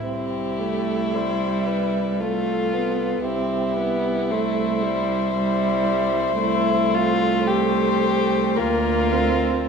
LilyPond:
<<
  \new Staff \with { instrumentName = "Violin" } { \time 3/4 \key c \major \tempo 4 = 57 g'4 c''8 b'8 a'4 | g'4 c''2~ | \key a \minor c''4 c''4 bes'4 | }
  \new Staff \with { instrumentName = "Violin" } { \time 3/4 \key c \major e'2 f'4 | e'2. | \key a \minor e'8 f'8 g'4 f'4 | }
  \new Staff \with { instrumentName = "Viola" } { \time 3/4 \key c \major c'8 a8 g4 a8 b8 | c'8 b8 a8 g8 g4 | \key a \minor a2 bes8 c'8 | }
  \new Staff \with { instrumentName = "Cello" } { \clef bass \time 3/4 \key c \major c,2. | c,2.~ | \key a \minor c,2 d,4 | }
>>